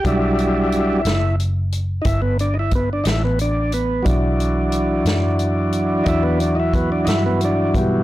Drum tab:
HH |xxxxxxxxxxxx|xxxxxxxxxxxx|
SD |---o-----o--|---o-----o--|
BD |o-----o-o---|o-----o-o--o|